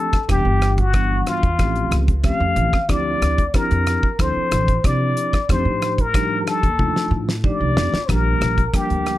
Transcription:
Already playing: F3 A3 C4 D4 G4 A4
0.13 muted upright bass stroke, kick, cross-stick, closed hi-hat
0.29 E1 E3 G3 B3 D4 G4, kick, cross-stick, closed hi-hat
0.45 G1
0.62 cross-stick, closed hi-hat
0.78 F#4, kick, closed hi-hat
0.94 E3 G3 B3 D4 F#4, kick, cross-stick, closed hi-hat
1.27 F4, cross-stick, closed hi-hat
1.43 E2, kick, closed hi-hat
1.58 A1 F3 A3 C4 C#4 G4, kick, cross-stick, closed hi-hat
1.76 closed hi-hat
1.91 C#2, cross-stick, closed hi-hat
2.08 kick, closed hi-hat
2.24 F3 A3 C4 C#4 G4 F5, kick, cross-stick, closed hi-hat
2.40 F2
2.56 A1, closed hi-hat
2.73 kick, cross-stick
2.89 D2 F3 C4 D4 E4 G4 D5, kick, cross-stick, closed hi-hat
3.22 D2, cross-stick, closed hi-hat
3.38 kick, closed hi-hat
3.54 F3 C4 D4 E4 G4 A#4, kick, cross-stick, closed hi-hat
3.71 F2, closed hi-hat
3.87 cross-stick, closed hi-hat
4.03 kick
4.19 D2 F3 C4 D4 E4 A4 C5, kick, cross-stick, closed hi-hat
4.36 muted upright bass stroke
4.52 A1, cross-stick, closed hi-hat
4.68 kick, closed hi-hat
4.84 C3 F3 C4 D4 E4 G4 D5, kick, cross-stick, closed hi-hat
5.17 closed hi-hat
5.33 muted upright bass stroke, kick, cross-stick, closed hi-hat
5.49 F2 F3 A3 D4 D#4 G4 C5, kick, cross-stick, closed hi-hat
5.65 A2
5.82 cross-stick, closed hi-hat
5.98 A#4, kick, closed hi-hat
6.14 F3 G3 D4 D#4 G4, kick, cross-stick, closed hi-hat
6.47 A4, cross-stick, closed hi-hat
6.63 D#2, kick, closed hi-hat
6.79 F3 A3 D4 D#4 F4, kick, high tom
6.96 snare
7.11 A2
7.29 snare
7.44 F3 A3 D4 D#4 G4 D5, kick
7.61 C2
7.77 F2, snare
7.93 muted upright bass stroke, snare
8.09 A#1 F3 G3 A#3 D4 G4 A#4, kick, cross-stick, closed hi-hat
8.41 A#1, cross-stick, closed hi-hat
8.58 kick, closed hi-hat
8.74 F3 G3 A#3 D4 G4 A#4, kick, cross-stick, closed hi-hat
8.90 D2, closed hi-hat
9.06 cross-stick, closed hi-hat

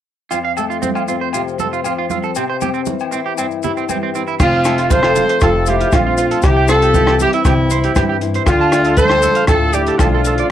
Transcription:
0.31 F2 F4, muted conga, low agogo, maracas
0.45 F5
0.57 A3 A4, muted conga, low agogo, maracas
0.70 F4, maracas
0.82 F3 C4, high conga, maracas
0.95 F4, low agogo, maracas
1.08 C4 F4, maracas
1.21 C5
1.33 C3 F4, muted conga, low agogo, maracas
1.48 maracas
1.59 A4 C5, high conga, maracas
1.73 F4, maracas
1.84 F3 F4, low agogo, maracas
1.98 F4
2.10 C4 F4, muted conga, high conga, maracas
2.23 A4, maracas
2.35 C3 C4, muted conga, low agogo, maracas
2.49 C5
2.61 C4 G4, muted conga, high conga, low agogo, maracas
2.74 C4, maracas
2.86 E3, high conga, maracas
2.99 low agogo, maracas
3.12 C4 E4, maracas
3.26 G4
3.37 G2 C4, muted conga, low agogo, maracas
3.51 maracas
3.63 E4 G4, low conga, maracas
3.77 C4, maracas
3.89 E3 C4, high conga, low agogo, maracas
4.03 C4
4.15 C4 E4, muted conga, maracas
4.27 E4, maracas
4.40 F1 F2 C4 F4, kick, cross-stick, crash, low agogo, maracas
4.53 F5
4.64 A3 A4, cross-stick, closed hi-hat, muted conga, low agogo, maracas
4.78 F4, closed hi-hat
4.90 F3 F4 A4 C5, kick, closed hi-hat, high conga, maracas
5.03 F4, cross-stick, low agogo
5.16 F4, closed hi-hat, muted conga, high conga, maracas
5.29 C5, closed hi-hat
5.40 F1 C3 C4 F4 A4, kick, cross-stick, closed hi-hat, muted conga, low agogo, maracas
5.66 A3 E4 F4 G4, closed hi-hat, maracas
5.80 F4, closed hi-hat
5.92 A#1 F3 C4 F4, kick, cross-stick, closed hi-hat, high conga, low agogo, maracas
6.07 F4
6.17 C4 F4, closed hi-hat, maracas
6.31 A4, closed hi-hat
6.42 C2 C3 E4 G4, muted clean electric guitar stroke, kick, cross-stick, closed hi-hat, muted conga, low agogo, maracas
6.57 G5
6.68 C4 F4 A4 C5, cross-stick, closed hi-hat, muted conga, low agogo, maracas
6.82 G4, closed hi-hat
6.94 E3 G4, kick, closed hi-hat, high conga, maracas
7.07 G4, cross-stick, low agogo
7.20 E4 G4, closed hi-hat, muted conga, high conga, maracas
7.33 C4 E4 E5, closed hi-hat
7.45 C2 G2 C4 G4, kick, cross-stick, closed hi-hat, low agogo, maracas
7.70 C4 C5, closed hi-hat, maracas
7.84 G4, closed hi-hat
7.95 G2 E3 G4, kick, cross-stick, closed hi-hat, high conga, low agogo, maracas
8.09 G4
8.21 E4, closed hi-hat
8.34 C5, closed hi-hat
8.46 D2 D3 D4 F4, muted clean electric guitar stroke, kick, cross-stick, closed hi-hat, low agogo, maracas
8.61 A5
8.72 A3 D5, cross-stick, closed hi-hat, muted conga, low agogo, maracas
8.84 A4, closed hi-hat
8.97 F3 A4 C5, kick, closed hi-hat, high conga, maracas
9.10 A4, cross-stick, low agogo
9.22 A4, closed hi-hat, muted conga, high conga, maracas
9.35 F5, closed hi-hat
9.47 D2 A2 D4 F4 A4, kick, cross-stick, closed hi-hat, low agogo, maracas
9.73 A3 E4 G4 D5, closed hi-hat, maracas
9.87 A4, closed hi-hat
9.98 B1 F3 D4 F4 A4, kick, cross-stick, closed hi-hat, high conga, low agogo, maracas
10.14 A4
10.25 D4 A4, closed hi-hat, maracas
10.38 D5, closed hi-hat

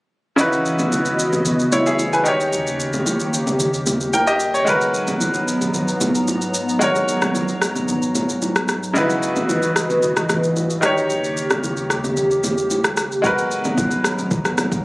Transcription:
0.36 C#2 C#3 E3 B3 C#4 D#4 E4 F#4 D#5, low conga, shaker
0.41 B4
0.53 shaker
0.65 shaker
0.79 low bongo, shaker
0.92 high bongo, low conga, shaker
1.05 shaker
1.19 shaker
1.33 low bongo, shaker
1.45 low conga, shaker
1.59 shaker
1.72 E4 C#5, high bongo, low bongo, shaker
1.86 G#4 E5, shaker
1.99 high bongo, shaker
2.13 B4 G#5, shaker
2.24 D#2 D#3 D#4 G4, shaker
2.28 C#5
2.40 shaker
2.53 low conga, shaker
2.67 shaker
2.80 shaker
2.93 low bongo, shaker
3.06 high bongo, low conga, shaker
3.20 shaker
3.34 shaker
3.47 low bongo, shaker
3.60 low conga, shaker
3.74 shaker
3.86 high bongo, low bongo, shaker
4.01 shaker
4.13 A#4 G5, high bongo, shaker
4.27 G4 D#5, shaker
4.40 shaker
4.54 C#5, shaker
4.65 G#2 F#3 G#3 B3 F#4 A#4 A#5, low conga, shaker
4.69 B4
4.81 shaker
4.94 shaker
5.07 low bongo, shaker
5.21 high bongo, low conga, shaker
5.34 shaker
5.48 shaker
5.61 low bongo, shaker
5.74 low conga, shaker
5.88 shaker
6.01 high bongo, low bongo, shaker
6.15 shaker
6.28 high bongo, shaker
6.42 shaker
6.54 shaker
6.69 shaker
6.79 G#3 F#4 A#4, low conga, shaker
6.84 C#5
6.95 low bongo, shaker
7.08 shaker
7.22 cross-stick, low bongo, shaker
7.35 high bongo, low conga, shaker
7.48 shaker
7.62 cross-stick, shaker
7.75 low bongo, shaker
7.88 low conga, shaker
8.02 shaker
8.15 high bongo, low bongo, shaker
8.29 shaker
8.42 high bongo, shaker
8.56 cross-stick, shaker
8.68 cross-stick, shaker
8.83 shaker
8.93 C#2 C#3 E3 G#3 D#4 E4 F#4 B4 D#5, low conga, shaker
8.98 B4
9.10 shaker
9.23 shaker
9.36 low bongo, shaker
9.49 high bongo, low conga, shaker
9.62 shaker
9.76 cross-stick, shaker
9.90 low bongo, shaker
10.02 low conga, shaker
10.17 cross-stick, shaker
10.29 cross-stick, high bongo, low bongo, shaker
10.44 shaker
10.56 high bongo, shaker
10.70 shaker
10.81 D#2 C#3 D#3 D#4 G4, cross-stick, shaker
10.85 C#5
10.98 shaker
11.10 low conga, shaker
11.24 shaker
11.37 shaker
11.50 cross-stick, low bongo, shaker
11.63 high bongo, low conga, shaker
11.77 shaker
11.90 cross-stick, shaker
12.04 low bongo, shaker
12.17 low conga, shaker
12.31 shaker
12.44 high bongo, low bongo, shaker
12.58 shaker
12.70 high bongo, shaker
12.84 cross-stick, shaker
12.97 cross-stick, shaker
13.12 shaker
13.22 G#2 F#3 G#3 B3 F#4 A#4 A#5, kick, low conga, shaker
13.27 B4
13.38 shaker
13.51 shaker
13.64 low bongo, shaker
13.78 kick, high bongo, low conga, shaker
13.91 shaker
14.04 cross-stick, shaker
14.18 low bongo, shaker
14.31 kick, low conga, shaker
14.45 cross-stick, shaker
14.58 cross-stick, high bongo, low bongo, shaker
14.72 kick, shaker

